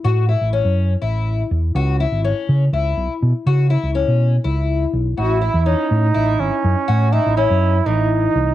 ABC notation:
X:1
M:7/8
L:1/16
Q:1/4=123
K:Alyd
V:1 name="Twelve-string acoustic guitar"
F2 E2 C4 E4 z2 | F2 E2 C4 E4 z2 | F2 E2 C4 E4 z2 | F2 E2 C4 E4 z2 |
F2 E2 C4 E,4 z2 |]
V:2 name="Flugelhorn"
z12 z2 | z12 z2 | z12 z2 | E4 D6 C4- |
C2 D2 E4 D6 |]
V:3 name="Fingered electric bass" clef=bass
A,,3 A,,,2 F,,3 A,,,4 E,,2 | C,,3 G,,,2 z C,2 C,,2 B,,, z B,, z | C,3 C,,2 B,,3 C,,4 B,,,2 | A,,,3 E,,2 z A,,2 A,,,2 G,,, z F,, z |
A,,3 A,,,2 F,,3 A,,,4 ^B,,,2 |]